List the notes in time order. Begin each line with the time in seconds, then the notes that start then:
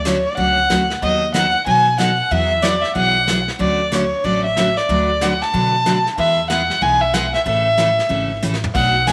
Already playing: D2
0.05 D3 F#3 A3 C#4 F#4 C#5, snare, hi-hat pedal
0.27 D5
0.37 C#2 D3 F#3 A3 C#4 F#4 F#5, brush sweep, kick
0.70 D2 D3 F#3 A3 C#4 F#4, snare, hi-hat pedal
0.90 snare
1.02 D#2 D#3 F#3 B3 D#4 A4 D#5, brush sweep, kick
1.34 D#3 F#3 B3 D#4 A4 F#5, snare, hi-hat pedal
1.66 B2 D#3 F#3 B3 D#4 A4 G#5, brush sweep, kick
1.98 D#3 F#3 B3 D#4 A4 F#5, snare, hi-hat pedal
2.31 E2 E3 F#3 B3 E4 G#4 E5, brush sweep, kick
2.62 E3 F#3 B3 E4 G#4 D5, snare, hi-hat pedal
2.82 E5, snare
2.95 B1 E3 F#3 B3 E4 G#4 F#5, brush sweep, kick
3.27 E3 F#3 B3 E4 G#4, snare, hi-hat pedal
3.48 snare
3.59 D2 D3 F#3 A3 C#4 F#4 D5, brush sweep, kick
3.92 D3 F#3 A3 C#4 F#4 C#5, snare, hi-hat pedal
4.24 A1 D3 F#3 A3 C#4 F#4 D5, brush sweep, kick
4.45 E5
4.57 D3 F#3 A3 C#4 F#4, snare, hi-hat pedal
4.77 D5, snare
4.89 D2 D3 F#3 A3 D4 F#4 B4, brush sweep, kick
5.21 D3 F#3 A3 D4 F#4 B4 F#5, snare, hi-hat pedal
5.42 A5, snare
5.54 B2 D3 F#3 A3 D4 F#4 B4, brush sweep, kick
5.86 D3 F#3 A3 D4 F#4 B4, snare, hi-hat pedal
6.06 snare
6.18 E2 E3 G#3 B3 E4 G#4 E5, brush sweep, kick
6.50 E3 G#3 B3 E4 G#4 F#5, snare, hi-hat pedal
6.70 snare
6.81 B1 E3 G#3 B3 E4 G#4 G#5, brush sweep, kick
7.01 E5
7.14 E3 G#3 B3 E4 G#4 F#5, snare, hi-hat pedal
7.34 E5, snare
7.46 A1 C#3 E3 A3 C#4 A4 E5, brush sweep, kick
7.77 C#3 E3 A3 C#4 A4, snare, hi-hat pedal
7.99 snare
8.09 G#1 C#3 E3 A3 C#4 A4, brush sweep, kick
8.42 A1 C#3 E3 A3 C#4 A4, hi-hat pedal
8.54 snare
8.64 floor tom
8.74 B1 B2 F#3 A3 D4 F#4 F#5, brush sweep, kick, crash
9.07 B2 F#3 A3 D4 F#4 G#5, snare, hi-hat pedal